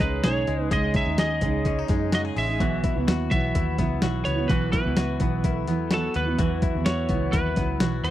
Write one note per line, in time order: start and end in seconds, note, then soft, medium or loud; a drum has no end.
0.00 0.20 C#2 loud
0.00 0.21 C#3 medium
0.00 1.70 D#3 medium
0.00 0.47 G#3 medium
0.00 0.23 G#3 medium
0.00 0.24 C#4 medium
0.00 0.95 D#4 medium
0.00 0.25 D#4 medium
0.00 0.23 G#4 medium
0.00 0.25 B4 medium
0.00 kick medium
0.23 0.44 B1 medium
0.23 0.59 C#3 medium
0.23 0.59 G#3 medium
0.23 0.60 C#4 medium
0.23 0.58 D#4 medium
0.23 0.71 G#4 medium
0.23 0.72 C#5 loud
0.23 snare loud
0.23 closed hi-hat medium
0.47 0.68 C#2 medium
0.47 0.70 G#3 medium
0.47 closed hi-hat medium
0.59 0.70 G#3 soft
0.59 0.71 C#4 medium
0.59 0.71 D#4 medium
0.70 1.01 C#2 loud
0.70 1.06 C#3 medium
0.70 1.42 G#3 medium
0.70 1.07 G#3 medium
0.70 1.07 C#4 medium
0.70 1.05 D#4 medium
0.70 1.18 G#4 medium
0.70 0.94 D#5 loud
0.70 kick loud
0.70 closed hi-hat medium
0.94 1.66 D#4 medium
0.94 1.18 E5 loud
0.94 kick medium
0.94 closed hi-hat medium
1.06 1.17 D#2 medium
1.06 1.42 G#3 soft
1.06 1.43 C#4 medium
1.06 1.42 D#4 medium
1.18 1.39 D#2 loud
1.18 2.13 G#4 medium
1.18 2.14 D#5 medium
1.18 snare loud
1.18 closed hi-hat loud
1.41 1.82 C#2 medium
1.41 1.87 C#3 medium
1.41 1.89 G#3 medium
1.41 1.88 G#3 medium
1.41 1.89 C#4 medium
1.41 1.90 D#4 medium
1.41 kick medium
1.41 closed hi-hat medium
1.65 1.79 C#4 medium
1.65 kick medium
1.65 closed hi-hat medium
1.79 2.66 D#4 medium
1.88 2.30 F#2 medium
1.88 2.09 C#3 medium
1.88 2.11 G#3 medium
1.88 2.35 G#3 medium
1.88 2.11 C#4 medium
1.88 2.12 D#4 medium
1.88 kick medium
1.88 snare soft
1.88 closed hi-hat medium
2.10 2.47 C#3 medium
2.10 2.48 G#3 medium
2.10 2.48 C#4 medium
2.10 2.46 D#4 medium
2.10 2.25 F#4 medium
2.10 snare loud
2.10 closed hi-hat medium
2.15 2.21 D#5 loud
2.25 2.60 G#4 medium
2.36 2.61 A1 medium
2.36 2.65 G#3 medium
2.36 3.04 E5 medium
2.36 open hi-hat medium
2.47 2.61 G#3 soft
2.47 2.60 C#4 soft
2.47 2.60 D#4 medium
2.60 2.91 B1 medium
2.60 2.95 B2 medium
2.60 2.96 E3 medium
2.60 4.50 E3 medium
2.60 2.96 F#3 medium
2.60 2.96 B3 medium
2.60 2.94 E4 medium
2.60 3.07 F#4 medium
2.60 kick medium
2.60 closed hi-hat medium
2.84 3.55 E4 medium
2.84 kick medium
2.84 closed hi-hat medium
2.95 3.06 C#2 medium
2.95 3.32 F#3 soft
2.95 3.32 B3 medium
2.95 3.31 E4 medium
3.07 3.28 D#2 loud
3.07 4.02 F#4 medium
3.07 snare loud
3.07 closed hi-hat loud
3.31 3.52 B1 medium
3.31 3.78 E3 medium
3.31 3.79 F#3 medium
3.31 3.78 B3 medium
3.31 3.80 B3 medium
3.31 3.81 E4 medium
3.31 4.24 E5 loud
3.31 kick medium
3.31 closed hi-hat medium
3.55 3.75 D#2 medium
3.55 4.73 E4 medium
3.55 kick medium
3.55 closed hi-hat medium
3.78 3.99 C#2 medium
3.78 4.00 E3 medium
3.78 4.01 F#3 medium
3.78 4.26 B3 medium
3.78 4.02 B3 medium
3.78 4.03 E4 medium
3.78 kick medium
3.78 snare soft
3.78 closed hi-hat medium
4.01 4.23 B1 medium
4.01 4.37 E3 medium
4.01 4.38 F#3 medium
4.01 4.38 B3 medium
4.01 4.35 E4 medium
4.01 4.50 F#4 medium
4.01 snare loud
4.01 closed hi-hat medium
4.25 4.46 C#2 medium
4.25 5.21 B3 medium
4.25 4.47 C#5 medium
4.25 closed hi-hat medium
4.37 4.49 F#3 soft
4.37 4.50 B3 soft
4.37 4.49 E4 medium
4.48 4.80 B1 medium
4.48 4.85 B2 medium
4.48 4.85 E3 medium
4.48 6.38 E3 medium
4.48 4.85 F#3 medium
4.48 4.85 B3 medium
4.48 4.83 E4 medium
4.48 4.97 F#4 medium
4.48 4.71 B4 medium
4.48 kick medium
4.48 closed hi-hat medium
4.72 5.44 E4 medium
4.72 5.56 B4 loud
4.72 kick medium
4.72 closed hi-hat medium
4.84 4.96 C#2 medium
4.84 5.19 F#3 soft
4.84 5.21 B3 soft
4.84 5.20 E4 medium
4.97 5.17 C#2 medium
4.97 5.91 F#4 medium
4.97 snare loud
4.97 closed hi-hat loud
5.19 5.68 B1 medium
5.19 5.67 E3 medium
5.19 5.69 F#3 medium
5.19 5.68 B3 medium
5.19 5.70 B3 medium
5.19 5.71 E4 medium
5.19 kick medium
5.19 closed hi-hat medium
5.44 6.62 E4 medium
5.44 kick medium
5.44 closed hi-hat medium
5.56 5.93 A4 loud
5.68 6.08 E2 medium
5.68 5.91 E3 medium
5.68 5.92 F#3 medium
5.68 6.16 B3 medium
5.68 5.93 B3 medium
5.68 5.93 E4 medium
5.68 snare soft
5.68 closed hi-hat medium
5.91 6.27 E3 medium
5.91 6.28 F#3 medium
5.91 6.27 B3 medium
5.91 6.38 F#4 medium
5.91 6.15 A4 medium
5.91 snare loud
5.91 closed hi-hat medium
5.95 6.26 E4 medium
6.14 6.36 D#2 medium
6.14 6.44 B3 medium
6.14 6.60 B4 medium
6.14 closed hi-hat medium
6.27 6.40 F#3 soft
6.27 6.40 B3 medium
6.27 6.39 E4 medium
6.39 6.69 E2 medium
6.39 8.10 E3 medium
6.39 6.75 E3 medium
6.39 6.75 F#3 medium
6.39 6.76 B3 medium
6.39 6.75 E4 medium
6.39 6.85 F#4 medium
6.39 kick loud
6.39 closed hi-hat medium
6.62 7.33 E4 medium
6.62 kick medium
6.62 closed hi-hat medium
6.75 6.85 D#2 medium
6.75 7.11 F#3 soft
6.75 7.11 B3 medium
6.75 7.11 E4 medium
6.86 7.06 E2 loud
6.86 7.79 F#4 medium
6.86 7.35 C#5 loud
6.86 snare loud
6.86 closed hi-hat loud
7.09 7.30 C#2 medium
7.09 7.56 E3 medium
7.09 7.57 F#3 medium
7.09 7.56 B3 medium
7.09 kick medium
7.09 closed hi-hat medium
7.13 7.57 B3 medium
7.13 7.59 E4 medium
7.32 7.54 D#2 loud
7.32 8.10 E4 medium
7.32 7.77 B4 medium
7.32 kick medium
7.32 closed hi-hat medium
7.56 7.77 C#2 medium
7.56 7.79 E3 medium
7.56 7.81 F#3 medium
7.56 8.03 B3 medium
7.56 7.81 B3 medium
7.56 7.82 E4 medium
7.56 kick medium
7.56 snare soft
7.56 closed hi-hat medium
7.80 8.01 B1 loud
7.80 8.10 E3 medium
7.80 8.10 F#3 medium
7.80 8.10 B3 medium
7.80 8.10 E4 medium
7.80 8.10 F#4 medium
7.80 snare loud
7.80 closed hi-hat medium
8.03 8.10 D#2 medium
8.03 8.10 B3 medium
8.03 8.10 C#5 loud
8.03 closed hi-hat medium